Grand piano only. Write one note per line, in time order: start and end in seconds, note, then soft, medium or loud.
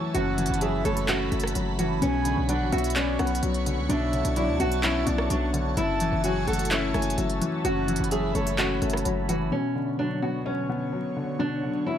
0.00 0.14 F#2 medium
0.00 0.38 E3 medium
0.00 0.62 F#3 medium
0.00 0.85 A3 medium
0.00 0.38 C#4 loud
0.14 1.32 F#2 loud
0.38 1.55 E3 medium
0.62 1.54 F#3 medium
0.85 1.30 A3 medium
1.09 2.02 C#4 loud
1.32 2.02 A3 medium
1.55 2.02 F#3 medium
1.79 2.02 E3 medium
2.02 3.19 B2 medium
2.25 3.43 D3 medium
2.49 3.41 F#3 medium
2.72 3.18 B3 medium
2.95 4.13 C#4 loud
3.19 4.37 B3 medium
3.43 4.35 F#3 medium
3.66 4.11 D3 medium
3.89 5.07 B2 loud
4.13 5.30 D3 medium
4.36 5.28 F#3 medium
4.60 5.05 B3 medium
4.84 5.77 C#4 loud
5.06 5.77 B3 medium
5.30 5.77 F#3 medium
5.53 5.77 D3 medium
5.77 6.94 F#2 medium
6.01 7.18 E3 medium
6.25 7.17 F#3 medium
6.47 6.93 A3 medium
6.71 7.88 C#4 loud
6.94 8.12 A3 medium
7.18 8.10 F#3 medium
7.41 7.87 E3 medium
7.64 8.82 F#2 loud
7.88 9.05 E3 medium
8.12 9.04 F#3 medium
8.35 8.80 A3 medium
8.59 9.52 C#4 loud
8.82 9.52 A3 medium
9.05 9.52 F#3 medium
9.29 9.52 E3 medium
9.52 10.69 B2 medium
9.75 10.93 D3 medium
9.99 10.91 F#3 medium
10.22 10.68 B3 medium
10.46 11.63 C#4 loud
10.70 11.87 B3 medium
10.93 11.85 F#3 medium
11.16 11.62 D3 medium
11.39 11.98 B2 medium
11.63 11.98 D3 medium
11.86 11.98 F#3 medium